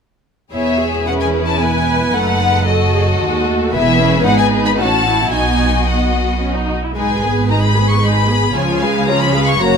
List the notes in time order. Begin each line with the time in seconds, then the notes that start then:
0.53 E1 E2 B3 E4 G#4 C#5 E5
0.81 G#4
1.07 C#4 E4 B4 F#5
1.20 G#5
1.47 A5
1.60 B3 B4 G#5
1.88 B3
2.14 F#1 F#2 A3 D#4 A4 F#5
2.43 G#3
2.68 F#3 F#4 A4 D#5
2.95 G#4
3.21 D#2 G#3 F#4
3.47 A3
3.73 E1 E2 B3 E4 G#4 B4 E5
4.00 C#4
4.25 G#1 G#2 B3 D#4 G#4 F#5
4.38 G#5
4.65 B5
4.78 A1 A2 C#4 F#4 F#5 A5
5.05 E4
5.32 B1 B2 B3 D#4 F#4 D#5 G#5
5.87 B3 F#5
6.41 C#4
6.55 D#4
6.83 E4
6.96 G#1 G#2 G#3 D#4 G#4 B4 G#5
7.23 B3 G#4 B4
7.50 G#3 D#4 G#4 B4 A#5
7.62 B5
7.76 B3 G#4 B4
7.90 C#6
8.03 G#3 D#4 G#4 B4 B5
8.29 B3 G#4 B4
8.55 C#2 C#3 F3 F4 G#4 C#5 G#5
8.80 G#3 G#4 B4 F5
9.07 F3 F4 G#4 C#5 A#5
9.20 B5
9.34 G#3 G#4 B4 F5
9.47 C#6
9.59 F#1 F#2 A#3 F#4 C#5 A#5